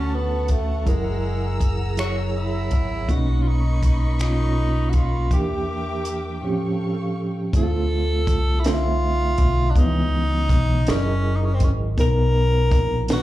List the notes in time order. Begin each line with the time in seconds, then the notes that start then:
Already playing: D2 D3 A3 C#4 F#4 A4 C#5 F#5 A5 C#6
0.14 B3
0.48 A3, kick, closed hi-hat
0.86 F#1 F#3 G#3 E4 G#4 A#4 A#5 E6, kick, closed hi-hat
1.61 kick, closed hi-hat
1.97 F#3 E4 F#4 G#4 C#5, finger snap, closed hi-hat
2.36 E4
2.71 G#1, kick, closed hi-hat
3.08 B1 B2 A#3 C#4 D#4 F#4 D#5 B5 C#6, kick, closed hi-hat
3.42 F4
3.48 D#4
3.83 kick, closed hi-hat
4.19 B2 A#3 C#4 D#4 F4, finger snap, closed hi-hat
4.90 F#4, closed hi-hat
4.94 F4, kick
5.31 E2 E3 A#3 D4 G4 A#4 E5 G5 D6, kick, closed hi-hat
6.05 closed hi-hat
6.42 A2 F3 C4 C#4 G4 A4 F5 C#6
7.53 D2 D3 A3 C4 E4 A4, kick, closed hi-hat
7.63 F4
8.27 C2, kick, closed hi-hat
8.60 E4
8.64 D3 A3 C4 D#4 F4, snare, closed hi-hat
8.74 E5
9.38 B1, kick, closed hi-hat
9.71 D4
9.76 C#2 C#3 G#3 B3 D#4, kick, closed hi-hat
9.85 E3
10.49 B1, kick, closed hi-hat
10.87 F#1 F#3 C#4 E4 G#4 A#4 D5, snare, closed hi-hat
10.96 D#5
11.36 D#4
11.45 C#4
11.54 C4
11.60 G#1 C#4, kick, closed hi-hat
11.97 B1 B2 B3 D#4 A#4, kick, closed hi-hat
12.72 A#1, kick, closed hi-hat
13.08 D#3 B3 D#4 B4, snare, closed hi-hat
13.13 F#4